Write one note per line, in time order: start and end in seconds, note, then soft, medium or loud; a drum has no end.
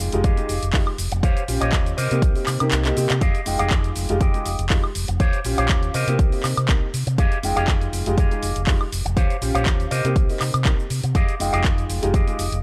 0.00 0.10 G5 medium
0.00 shaker medium
0.12 0.21 F1 medium
0.12 0.34 G#3 medium
0.12 0.34 D#4 medium
0.12 0.35 F4 medium
0.12 0.35 G4 loud
0.12 closed hi-hat medium
0.12 shaker soft
0.24 0.34 F2 loud
0.24 0.68 G4 medium
0.24 0.68 G#4 medium
0.24 0.68 D#5 medium
0.24 0.68 F5 medium
0.24 kick loud
0.24 closed hi-hat medium
0.24 shaker soft
0.37 0.50 G#3 medium
0.37 0.50 D#4 medium
0.37 0.51 F4 medium
0.37 0.51 G4 medium
0.37 closed hi-hat soft
0.37 shaker soft
0.49 0.59 F1 medium
0.49 open hi-hat loud
0.49 shaker medium
0.62 0.71 F1 medium
0.62 closed hi-hat medium
0.62 shaker soft
0.73 0.83 F2 medium
0.73 0.88 G#3 medium
0.73 0.88 D#4 medium
0.73 0.88 F4 medium
0.73 0.89 G4 medium
0.73 kick loud
0.73 clap loud
0.73 open hi-hat medium
0.73 shaker medium
0.87 high woodblock medium
0.98 1.08 F1 medium
0.98 open hi-hat loud
0.98 shaker medium
1.12 1.20 F1 medium
1.12 muted clean electric guitar stroke medium
1.12 closed hi-hat medium
1.12 shaker soft
1.23 1.33 D#2 loud
1.23 1.43 G4 loud
1.23 1.43 C5 loud
1.23 1.43 C#5 medium
1.23 1.43 F5 loud
1.23 kick loud
1.23 closed hi-hat medium
1.23 shaker soft
1.37 closed hi-hat soft
1.37 shaker soft
1.48 1.58 A#1 medium
1.48 1.96 C#4 medium
1.48 1.96 F4 medium
1.48 1.97 G4 medium
1.48 open hi-hat loud
1.48 shaker medium
1.61 1.70 A#1 loud
1.61 1.92 G4 medium
1.61 1.92 C5 medium
1.61 1.92 C#5 medium
1.61 1.92 D#5 loud
1.61 closed hi-hat medium
1.61 high woodblock medium
1.61 shaker soft
1.72 1.91 D#2 medium
1.72 kick loud
1.72 clap loud
1.72 closed hi-hat medium
1.72 shaker soft
1.86 closed hi-hat soft
1.86 shaker soft
1.97 2.07 C3 loud
1.97 2.77 G4 medium
1.97 2.77 A#4 medium
1.97 2.77 C5 medium
1.97 2.77 D#5 medium
1.97 open hi-hat loud
1.97 shaker medium
2.10 2.19 C3 medium
2.10 2.32 A#3 medium
2.10 2.32 C4 medium
2.10 2.33 D#4 medium
2.10 2.33 G4 loud
2.10 closed hi-hat medium
2.10 shaker soft
2.22 2.32 C2 medium
2.22 kick loud
2.22 closed hi-hat medium
2.22 shaker soft
2.35 2.48 A#3 medium
2.35 2.49 C4 medium
2.35 2.49 D#4 medium
2.35 2.49 G4 medium
2.35 open hi-hat medium
2.35 shaker soft
2.46 2.57 C3 medium
2.46 clap medium
2.46 open hi-hat loud
2.46 high woodblock medium
2.46 shaker medium
2.60 2.69 C3 medium
2.60 2.81 A#3 medium
2.60 2.81 C4 medium
2.60 2.82 D#4 medium
2.60 2.82 G4 medium
2.60 closed hi-hat medium
2.60 high woodblock medium
2.60 shaker soft
2.71 2.90 C2 medium
2.71 clap loud
2.71 closed hi-hat medium
2.71 shaker soft
2.85 2.95 A#3 loud
2.85 2.95 C4 medium
2.85 2.95 D#4 medium
2.85 2.95 G4 loud
2.85 clap medium
2.85 closed hi-hat soft
2.85 shaker soft
2.96 3.07 C3 medium
2.96 3.11 A#3 medium
2.96 3.11 C4 medium
2.96 3.11 D#4 medium
2.96 3.11 G4 medium
2.96 open hi-hat loud
2.96 shaker medium
3.10 3.19 C3 medium
3.10 muted clean electric guitar stroke medium
3.10 clap loud
3.10 closed hi-hat medium
3.10 shaker soft
3.21 3.31 F2 loud
3.21 3.41 G4 loud
3.21 3.41 G#4 loud
3.21 3.41 D#5 loud
3.21 3.41 F5 loud
3.21 kick loud
3.21 closed hi-hat medium
3.21 shaker soft
3.35 closed hi-hat soft
3.35 shaker soft
3.46 3.56 F1 medium
3.46 4.06 G#3 medium
3.46 4.06 D#4 medium
3.46 4.06 F4 medium
3.46 4.07 G5 medium
3.46 open hi-hat loud
3.46 shaker medium
3.59 3.68 F1 loud
3.59 3.90 G4 medium
3.59 3.90 G#4 medium
3.59 3.90 D#5 medium
3.59 3.90 F5 loud
3.59 closed hi-hat medium
3.59 high woodblock medium
3.59 shaker soft
3.70 3.90 F2 medium
3.70 kick loud
3.70 clap loud
3.70 closed hi-hat medium
3.70 shaker soft
3.84 closed hi-hat soft
3.84 shaker soft
3.96 4.06 F1 loud
3.96 open hi-hat loud
3.96 shaker medium
4.09 4.18 F1 medium
4.09 4.31 G#3 medium
4.09 4.31 D#4 medium
4.09 4.31 F4 medium
4.09 4.31 G4 loud
4.09 closed hi-hat medium
4.09 shaker soft
4.20 4.30 F2 medium
4.20 4.65 G4 medium
4.20 4.65 G#4 medium
4.20 4.65 D#5 medium
4.20 4.65 G5 medium
4.20 kick loud
4.20 closed hi-hat medium
4.20 shaker soft
4.34 4.47 G#3 medium
4.34 4.47 D#4 medium
4.34 4.47 F4 medium
4.34 4.47 G4 medium
4.34 closed hi-hat soft
4.34 shaker soft
4.46 4.55 F1 medium
4.46 open hi-hat loud
4.46 shaker medium
4.59 4.67 F1 medium
4.59 closed hi-hat medium
4.59 shaker soft
4.70 4.80 F2 medium
4.70 4.85 G#3 medium
4.70 4.85 D#4 medium
4.70 4.85 F4 medium
4.70 4.85 G4 medium
4.70 kick loud
4.70 clap loud
4.70 open hi-hat medium
4.70 shaker soft
4.84 high woodblock medium
4.95 5.05 F1 medium
4.95 open hi-hat loud
4.95 shaker medium
5.08 5.17 F1 medium
5.08 muted clean electric guitar stroke medium
5.08 closed hi-hat medium
5.08 shaker soft
5.20 5.30 D#2 loud
5.20 5.39 G4 loud
5.20 5.39 C5 loud
5.20 5.39 C#5 loud
5.20 5.39 F5 loud
5.20 kick loud
5.20 closed hi-hat medium
5.20 shaker soft
5.33 closed hi-hat soft
5.33 shaker soft
5.45 5.54 A#1 medium
5.45 5.93 C#4 medium
5.45 5.93 F4 medium
5.45 5.93 G4 medium
5.45 open hi-hat loud
5.45 shaker medium
5.58 5.66 A#1 loud
5.58 5.89 G4 medium
5.58 5.89 C5 medium
5.58 5.89 C#5 medium
5.58 5.89 F5 loud
5.58 closed hi-hat medium
5.58 high woodblock medium
5.58 shaker soft
5.69 5.88 D#2 medium
5.69 kick loud
5.69 clap loud
5.69 closed hi-hat medium
5.69 shaker soft
5.83 closed hi-hat soft
5.83 shaker soft
5.94 6.04 C3 loud
5.94 6.74 G4 medium
5.94 6.74 A#4 medium
5.94 6.74 C5 medium
5.94 6.74 D#5 loud
5.94 open hi-hat loud
5.94 shaker medium
6.07 6.16 C3 medium
6.07 6.29 A#3 medium
6.07 6.29 C4 medium
6.07 6.30 D#4 medium
6.07 6.30 G4 loud
6.07 closed hi-hat medium
6.07 shaker soft
6.19 6.29 C2 medium
6.19 kick loud
6.19 closed hi-hat medium
6.19 shaker soft
6.32 6.45 A#3 medium
6.32 6.46 C4 medium
6.32 6.46 D#4 medium
6.32 6.46 G4 medium
6.32 open hi-hat medium
6.32 shaker soft
6.43 6.54 C3 medium
6.43 clap medium
6.43 open hi-hat loud
6.43 high woodblock medium
6.43 shaker medium
6.57 6.66 C3 medium
6.57 closed hi-hat medium
6.57 high woodblock medium
6.57 shaker soft
6.69 6.78 C2 medium
6.69 6.84 A#3 medium
6.69 6.84 C4 medium
6.69 6.84 D#4 medium
6.69 6.84 G4 medium
6.69 kick loud
6.69 clap loud
6.69 closed hi-hat medium
6.69 shaker soft
6.94 7.03 C3 medium
6.94 open hi-hat loud
6.94 shaker medium
7.07 7.15 C3 medium
7.07 muted clean electric guitar stroke loud
7.07 closed hi-hat medium
7.07 shaker soft
7.18 7.28 F2 loud
7.18 7.38 G4 loud
7.18 7.38 G#4 loud
7.18 7.38 D#5 medium
7.18 7.38 F5 loud
7.18 kick loud
7.18 closed hi-hat medium
7.18 shaker soft
7.32 closed hi-hat soft
7.32 shaker soft
7.43 7.53 F1 medium
7.43 8.03 G#3 medium
7.43 8.03 D#4 medium
7.43 8.03 F4 medium
7.43 8.04 G5 medium
7.43 open hi-hat loud
7.43 shaker medium
7.56 7.65 F1 loud
7.56 7.87 G4 medium
7.56 7.87 G#4 medium
7.56 7.87 D#5 medium
7.56 7.87 F5 loud
7.56 closed hi-hat soft
7.56 high woodblock medium
7.56 shaker soft
7.68 7.86 F2 medium
7.68 kick loud
7.68 clap loud
7.68 closed hi-hat medium
7.68 shaker soft
7.81 closed hi-hat soft
7.81 shaker soft
7.92 8.02 F1 loud
7.92 open hi-hat loud
7.92 shaker medium
8.06 8.15 F1 medium
8.06 8.28 G#3 medium
8.06 8.28 D#4 medium
8.06 8.28 F4 medium
8.06 8.28 G4 loud
8.06 closed hi-hat medium
8.06 shaker soft
8.17 8.27 F2 medium
8.17 8.62 G4 medium
8.17 8.62 G#4 medium
8.17 8.62 D#5 medium
8.17 8.62 F5 medium
8.17 kick loud
8.17 closed hi-hat medium
8.17 shaker soft
8.31 8.44 G#3 medium
8.31 8.44 D#4 medium
8.31 8.44 F4 medium
8.31 8.44 G4 medium
8.31 closed hi-hat soft
8.31 shaker soft
8.43 8.52 F1 medium
8.43 open hi-hat loud
8.43 shaker medium
8.56 8.64 F1 medium
8.56 closed hi-hat medium
8.56 shaker soft
8.67 8.77 F2 medium
8.67 8.82 G#3 medium
8.67 8.82 D#4 medium
8.67 8.82 F4 medium
8.67 8.82 G4 medium
8.67 kick loud
8.67 clap loud
8.67 open hi-hat medium
8.67 shaker soft
8.81 high woodblock medium
8.92 9.02 F1 medium
8.92 open hi-hat loud
8.92 shaker medium
9.05 9.14 F1 medium
9.05 muted clean electric guitar stroke medium
9.05 closed hi-hat soft
9.05 shaker soft
9.17 9.26 D#2 loud
9.17 9.36 G4 loud
9.17 9.36 C5 loud
9.17 9.36 C#5 medium
9.17 9.36 F5 loud
9.17 kick loud
9.17 closed hi-hat medium
9.17 shaker soft
9.30 closed hi-hat soft
9.30 shaker soft
9.42 9.51 A#1 medium
9.42 9.90 C#4 medium
9.42 9.90 F4 medium
9.42 9.90 G4 medium
9.42 open hi-hat loud
9.42 shaker medium
9.55 9.63 A#1 loud
9.55 9.85 G4 medium
9.55 9.85 C5 medium
9.55 9.85 C#5 medium
9.55 9.85 F5 loud
9.55 closed hi-hat soft
9.55 high woodblock medium
9.55 shaker soft
9.66 9.85 D#2 medium
9.66 kick loud
9.66 clap loud
9.66 closed hi-hat medium
9.66 shaker soft
9.80 closed hi-hat soft
9.80 shaker soft
9.91 10.01 C3 loud
9.91 10.71 G4 medium
9.91 10.71 A#4 medium
9.91 10.71 C5 medium
9.91 10.71 D#5 loud
9.91 open hi-hat loud
9.91 shaker medium
10.04 10.13 C3 medium
10.04 10.26 A#3 medium
10.04 10.26 C4 medium
10.04 10.26 D#4 medium
10.04 10.26 G4 loud
10.04 closed hi-hat medium
10.04 shaker soft
10.16 10.26 C2 loud
10.16 kick loud
10.16 closed hi-hat medium
10.16 shaker soft
10.29 10.42 A#3 medium
10.29 10.42 C4 medium
10.29 10.42 D#4 medium
10.29 10.43 G4 medium
10.29 open hi-hat medium
10.29 shaker soft
10.40 10.50 C3 medium
10.40 clap medium
10.40 open hi-hat loud
10.40 high woodblock medium
10.40 shaker medium
10.54 10.67 C3 medium
10.54 closed hi-hat medium
10.54 high woodblock medium
10.54 shaker soft
10.65 10.75 C2 medium
10.65 10.80 A#3 medium
10.65 10.80 C4 medium
10.65 10.80 D#4 medium
10.65 10.80 G4 medium
10.65 kick loud
10.65 clap loud
10.65 closed hi-hat medium
10.65 shaker soft
10.80 shaker soft
10.90 11.00 C3 loud
10.90 open hi-hat loud
10.90 shaker medium
11.04 11.12 C3 loud
11.04 muted clean electric guitar stroke medium
11.04 closed hi-hat soft
11.04 shaker soft
11.15 11.25 F2 loud
11.15 11.34 G4 loud
11.15 11.34 G#4 loud
11.15 11.34 D#5 loud
11.15 11.34 F5 loud
11.15 kick loud
11.15 closed hi-hat medium
11.15 shaker soft
11.29 closed hi-hat soft
11.29 shaker soft
11.39 11.50 F1 medium
11.39 11.99 G#3 medium
11.39 12.00 D#4 medium
11.39 12.00 F4 medium
11.39 12.00 G5 medium
11.39 open hi-hat loud
11.39 shaker medium
11.53 11.62 F1 loud
11.53 11.84 G4 medium
11.53 11.84 G#4 medium
11.53 11.84 D#5 medium
11.53 11.84 F5 loud
11.53 closed hi-hat soft
11.53 high woodblock medium
11.53 shaker soft
11.64 11.83 F2 medium
11.64 kick loud
11.64 clap loud
11.64 closed hi-hat medium
11.64 shaker soft
11.78 closed hi-hat soft
11.78 shaker soft
11.90 11.99 F1 loud
11.90 open hi-hat loud
11.90 shaker medium
12.02 12.11 F1 medium
12.02 12.24 G#3 medium
12.02 12.24 D#4 medium
12.02 12.24 F4 medium
12.02 12.24 G4 loud
12.02 closed hi-hat medium
12.02 shaker soft
12.14 12.24 F2 medium
12.14 12.58 G4 medium
12.14 12.58 G#4 medium
12.14 12.58 D#5 medium
12.14 12.58 F5 medium
12.14 kick loud
12.14 closed hi-hat medium
12.14 shaker soft
12.27 12.40 G#3 medium
12.27 12.40 D#4 medium
12.27 12.40 F4 medium
12.27 12.41 G4 medium
12.27 closed hi-hat soft
12.27 shaker soft
12.39 12.49 F1 medium
12.39 open hi-hat loud
12.39 shaker medium
12.52 12.60 F1 medium
12.52 closed hi-hat medium
12.52 shaker soft